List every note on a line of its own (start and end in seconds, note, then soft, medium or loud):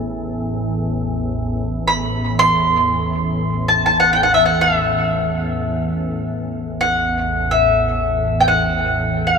0.00 6.00 A1 medium
0.00 6.00 E2 medium
1.88 2.39 B5 medium
2.39 3.68 C6 medium
3.68 3.84 A5 medium
3.86 3.99 A5 medium
4.00 4.10 F#5 medium
4.13 4.23 G5 medium
4.23 4.33 F#5 medium
4.34 4.45 E5 medium
4.46 4.59 F#5 medium
4.61 6.89 E5 medium
6.01 9.38 A1 medium
6.01 9.38 E2 medium
6.81 7.53 F#5 medium
7.51 8.43 E5 medium
8.40 8.47 G5 medium
8.48 9.28 F#5 medium
9.27 9.38 E5 medium